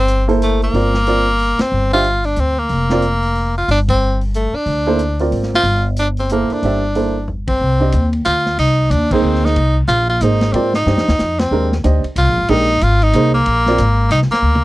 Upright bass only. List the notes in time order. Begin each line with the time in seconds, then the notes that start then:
Already playing: G1
0.73 G1
1.59 muted upright bass stroke
1.72 G1
2.37 D2
2.70 F1
3.68 G1
4.53 muted upright bass stroke
4.66 D2
5.31 G#1
5.63 G1
6.50 muted upright bass stroke
6.63 G1
7.61 C2
7.93 D#2
8.26 D2
8.58 C2
8.90 D#2
9.22 D2
9.56 C2
9.88 A#1
10.21 G#1
10.53 G#2
10.86 G2
10.97 F2
11.09 D#2
11.20 F2
11.51 D#2
11.84 D2
12.04 muted upright bass stroke
12.16 C2
12.27 A#1
12.38 G#1
12.49 A#1
12.82 G#1
13.13 C2
13.47 A#1
13.79 G#1
14.10 C2
14.30 muted upright bass stroke
14.42 D2